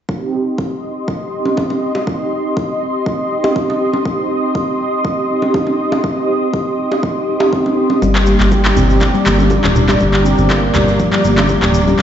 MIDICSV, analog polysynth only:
0, 0, Header, 1, 2, 480
1, 0, Start_track
1, 0, Tempo, 495868
1, 86, Time_signature, 4, 2, 24, 8
1, 11635, End_track
2, 0, Start_track
2, 0, Title_t, "Analog polysynth"
2, 0, Program_c, 0, 90
2, 87, Note_on_c, 0, 63, 65
2, 88, Note_on_c, 0, 60, 70
2, 88, Note_on_c, 0, 67, 81
2, 1259, Note_off_c, 0, 63, 0
2, 1260, Note_off_c, 0, 60, 0
2, 1260, Note_off_c, 0, 67, 0
2, 1286, Note_on_c, 0, 60, 77
2, 1286, Note_on_c, 0, 63, 70
2, 1286, Note_on_c, 0, 67, 89
2, 1979, Note_off_c, 0, 60, 0
2, 1979, Note_off_c, 0, 63, 0
2, 1979, Note_off_c, 0, 67, 0
2, 2005, Note_on_c, 0, 63, 66
2, 2006, Note_on_c, 0, 60, 73
2, 2006, Note_on_c, 0, 67, 76
2, 3178, Note_off_c, 0, 63, 0
2, 3179, Note_off_c, 0, 60, 0
2, 3179, Note_off_c, 0, 67, 0
2, 3205, Note_on_c, 0, 60, 79
2, 3205, Note_on_c, 0, 67, 90
2, 3206, Note_on_c, 0, 63, 77
2, 3898, Note_off_c, 0, 60, 0
2, 3898, Note_off_c, 0, 67, 0
2, 3899, Note_off_c, 0, 63, 0
2, 3923, Note_on_c, 0, 63, 65
2, 3924, Note_on_c, 0, 60, 73
2, 3924, Note_on_c, 0, 67, 78
2, 5097, Note_off_c, 0, 63, 0
2, 5098, Note_off_c, 0, 60, 0
2, 5098, Note_off_c, 0, 67, 0
2, 5127, Note_on_c, 0, 60, 81
2, 5127, Note_on_c, 0, 63, 74
2, 5127, Note_on_c, 0, 67, 90
2, 5819, Note_off_c, 0, 60, 0
2, 5819, Note_off_c, 0, 63, 0
2, 5819, Note_off_c, 0, 67, 0
2, 5847, Note_on_c, 0, 63, 66
2, 5847, Note_on_c, 0, 67, 78
2, 5848, Note_on_c, 0, 60, 73
2, 7019, Note_off_c, 0, 63, 0
2, 7019, Note_off_c, 0, 67, 0
2, 7020, Note_off_c, 0, 60, 0
2, 7048, Note_on_c, 0, 60, 78
2, 7048, Note_on_c, 0, 63, 74
2, 7048, Note_on_c, 0, 67, 90
2, 7740, Note_off_c, 0, 60, 0
2, 7740, Note_off_c, 0, 63, 0
2, 7740, Note_off_c, 0, 67, 0
2, 7768, Note_on_c, 0, 58, 71
2, 7768, Note_on_c, 0, 62, 65
2, 7768, Note_on_c, 0, 67, 82
2, 8940, Note_off_c, 0, 58, 0
2, 8940, Note_off_c, 0, 62, 0
2, 8940, Note_off_c, 0, 67, 0
2, 8967, Note_on_c, 0, 58, 79
2, 8967, Note_on_c, 0, 62, 74
2, 8968, Note_on_c, 0, 67, 90
2, 9659, Note_off_c, 0, 58, 0
2, 9659, Note_off_c, 0, 62, 0
2, 9660, Note_off_c, 0, 67, 0
2, 9686, Note_on_c, 0, 58, 72
2, 9686, Note_on_c, 0, 62, 66
2, 9686, Note_on_c, 0, 67, 82
2, 10859, Note_off_c, 0, 58, 0
2, 10859, Note_off_c, 0, 62, 0
2, 10859, Note_off_c, 0, 67, 0
2, 10886, Note_on_c, 0, 58, 81
2, 10886, Note_on_c, 0, 62, 73
2, 10886, Note_on_c, 0, 67, 90
2, 11579, Note_off_c, 0, 58, 0
2, 11579, Note_off_c, 0, 62, 0
2, 11579, Note_off_c, 0, 67, 0
2, 11606, Note_on_c, 0, 58, 71
2, 11606, Note_on_c, 0, 67, 82
2, 11635, Note_off_c, 0, 58, 0
2, 11635, Note_off_c, 0, 67, 0
2, 11635, End_track
0, 0, End_of_file